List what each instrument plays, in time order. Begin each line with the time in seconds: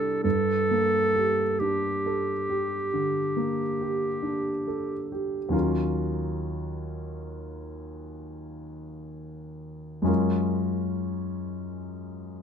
Already playing: grand piano C2 G3 D4 G4 A#4, clarinet A4
0.23 grand piano G2, clarinet A4
0.71 grand piano A#3
1.16 grand piano G4
1.60 grand piano D4, clarinet G4
2.06 grand piano A4
2.49 grand piano G4
2.93 grand piano D3
3.37 grand piano A#3
3.81 grand piano G4
4.23 grand piano D4
4.67 grand piano A4
5.12 grand piano G4
5.49 grand piano D#2 F#3 C#4 F4
5.54 grand piano A#4
10.02 grand piano F#2 G#3 C#4
10.06 grand piano F4 A#4